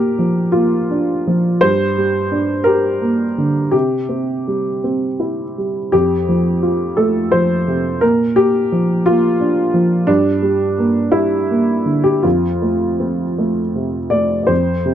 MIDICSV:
0, 0, Header, 1, 2, 480
1, 0, Start_track
1, 0, Key_signature, -1, "major"
1, 0, Tempo, 721154
1, 1085, Time_signature, 6, 3, 24, 8
1, 1085, Tempo, 692841
1, 2045, Tempo, 728155
1, 3965, Tempo, 692841
1, 7325, Tempo, 743494
1, 10012, End_track
2, 0, Start_track
2, 0, Title_t, "Upright piano"
2, 0, Program_c, 0, 0
2, 0, Control_c, 0, 64, 127
2, 0, Note_on_c, 0, 46, 49
2, 0, Note_on_c, 0, 58, 41
2, 0, Note_on_c, 0, 67, 70
2, 0, Note_on_c, 0, 70, 73
2, 125, Note_on_c, 0, 53, 42
2, 266, Note_off_c, 0, 58, 0
2, 346, Note_on_c, 0, 65, 65
2, 354, Note_off_c, 0, 67, 0
2, 358, Note_on_c, 0, 58, 43
2, 503, Note_off_c, 0, 53, 0
2, 604, Note_on_c, 0, 62, 43
2, 746, Note_off_c, 0, 58, 0
2, 848, Note_on_c, 0, 53, 44
2, 992, Note_off_c, 0, 62, 0
2, 1058, Note_off_c, 0, 46, 0
2, 1071, Note_on_c, 0, 72, 94
2, 1079, Note_off_c, 0, 65, 0
2, 1083, Note_on_c, 0, 43, 58
2, 1086, Note_off_c, 0, 53, 0
2, 1096, Control_c, 0, 64, 0
2, 1099, Note_off_c, 0, 70, 0
2, 1231, Control_c, 0, 64, 127
2, 1326, Note_on_c, 0, 55, 47
2, 1560, Note_on_c, 0, 62, 48
2, 1705, Note_off_c, 0, 55, 0
2, 1784, Note_on_c, 0, 70, 77
2, 1794, Note_off_c, 0, 72, 0
2, 1800, Note_on_c, 0, 67, 55
2, 1946, Note_off_c, 0, 62, 0
2, 2044, Note_on_c, 0, 58, 46
2, 2186, Note_off_c, 0, 67, 0
2, 2286, Note_on_c, 0, 50, 42
2, 2424, Note_off_c, 0, 58, 0
2, 2494, Note_off_c, 0, 43, 0
2, 2505, Note_on_c, 0, 67, 68
2, 2513, Note_off_c, 0, 70, 0
2, 2513, Note_on_c, 0, 48, 53
2, 2523, Note_off_c, 0, 50, 0
2, 2532, Control_c, 0, 64, 0
2, 2667, Control_c, 0, 64, 127
2, 2753, Note_on_c, 0, 60, 41
2, 3008, Note_on_c, 0, 55, 39
2, 3143, Note_off_c, 0, 60, 0
2, 3248, Note_on_c, 0, 60, 40
2, 3390, Note_off_c, 0, 55, 0
2, 3482, Note_on_c, 0, 64, 38
2, 3631, Note_off_c, 0, 60, 0
2, 3718, Note_off_c, 0, 67, 0
2, 3736, Note_on_c, 0, 55, 37
2, 3870, Note_off_c, 0, 64, 0
2, 3934, Note_off_c, 0, 48, 0
2, 3961, Note_on_c, 0, 67, 79
2, 3968, Note_on_c, 0, 41, 50
2, 3970, Note_off_c, 0, 55, 0
2, 3977, Control_c, 0, 64, 0
2, 4106, Control_c, 0, 64, 127
2, 4213, Note_on_c, 0, 53, 42
2, 4448, Note_on_c, 0, 65, 44
2, 4600, Note_off_c, 0, 53, 0
2, 4684, Note_on_c, 0, 69, 69
2, 4693, Note_off_c, 0, 67, 0
2, 4693, Note_on_c, 0, 57, 47
2, 4839, Note_off_c, 0, 65, 0
2, 4926, Note_on_c, 0, 72, 79
2, 4932, Note_off_c, 0, 69, 0
2, 4940, Note_on_c, 0, 53, 44
2, 5080, Note_off_c, 0, 57, 0
2, 5177, Note_on_c, 0, 48, 43
2, 5322, Note_off_c, 0, 53, 0
2, 5390, Note_off_c, 0, 41, 0
2, 5408, Note_on_c, 0, 70, 80
2, 5411, Note_off_c, 0, 72, 0
2, 5416, Note_off_c, 0, 48, 0
2, 5418, Note_on_c, 0, 46, 59
2, 5427, Control_c, 0, 64, 0
2, 5548, Control_c, 0, 64, 127
2, 5650, Note_on_c, 0, 67, 87
2, 5652, Note_off_c, 0, 70, 0
2, 5661, Note_on_c, 0, 58, 47
2, 5901, Note_on_c, 0, 53, 47
2, 6038, Note_off_c, 0, 58, 0
2, 6126, Note_off_c, 0, 67, 0
2, 6133, Note_on_c, 0, 65, 79
2, 6149, Note_on_c, 0, 58, 50
2, 6274, Note_off_c, 0, 53, 0
2, 6373, Note_on_c, 0, 62, 46
2, 6515, Note_off_c, 0, 58, 0
2, 6604, Note_on_c, 0, 53, 45
2, 6749, Note_off_c, 0, 62, 0
2, 6814, Note_off_c, 0, 46, 0
2, 6834, Note_on_c, 0, 62, 84
2, 6843, Note_off_c, 0, 53, 0
2, 6843, Note_off_c, 0, 65, 0
2, 6844, Note_on_c, 0, 43, 59
2, 6854, Control_c, 0, 64, 0
2, 6972, Control_c, 0, 64, 127
2, 7080, Note_on_c, 0, 55, 45
2, 7328, Note_on_c, 0, 58, 44
2, 7461, Note_off_c, 0, 55, 0
2, 7543, Note_on_c, 0, 64, 80
2, 7552, Note_off_c, 0, 62, 0
2, 7553, Note_on_c, 0, 55, 50
2, 7697, Note_off_c, 0, 58, 0
2, 7793, Note_on_c, 0, 58, 43
2, 7932, Note_off_c, 0, 55, 0
2, 8021, Note_on_c, 0, 50, 38
2, 8137, Note_on_c, 0, 67, 66
2, 8143, Note_off_c, 0, 64, 0
2, 8175, Note_off_c, 0, 58, 0
2, 8247, Note_off_c, 0, 43, 0
2, 8261, Note_on_c, 0, 65, 60
2, 8265, Note_off_c, 0, 67, 0
2, 8268, Note_off_c, 0, 50, 0
2, 8272, Note_on_c, 0, 41, 47
2, 8284, Control_c, 0, 64, 0
2, 8396, Control_c, 0, 64, 127
2, 8515, Note_on_c, 0, 57, 39
2, 8758, Note_on_c, 0, 60, 39
2, 8911, Note_off_c, 0, 57, 0
2, 9004, Note_off_c, 0, 65, 0
2, 9008, Note_on_c, 0, 57, 39
2, 9150, Note_off_c, 0, 60, 0
2, 9247, Note_on_c, 0, 48, 35
2, 9392, Note_off_c, 0, 57, 0
2, 9470, Note_on_c, 0, 74, 67
2, 9482, Note_on_c, 0, 57, 37
2, 9632, Note_off_c, 0, 48, 0
2, 9671, Note_off_c, 0, 74, 0
2, 9684, Note_on_c, 0, 74, 42
2, 9702, Note_off_c, 0, 41, 0
2, 9706, Note_on_c, 0, 72, 68
2, 9717, Note_on_c, 0, 41, 55
2, 9724, Note_off_c, 0, 57, 0
2, 9729, Note_off_c, 0, 74, 0
2, 9740, Control_c, 0, 64, 0
2, 9869, Control_c, 0, 64, 127
2, 9957, Note_on_c, 0, 48, 46
2, 10012, Note_off_c, 0, 41, 0
2, 10012, Note_off_c, 0, 48, 0
2, 10012, Note_off_c, 0, 72, 0
2, 10012, End_track
0, 0, End_of_file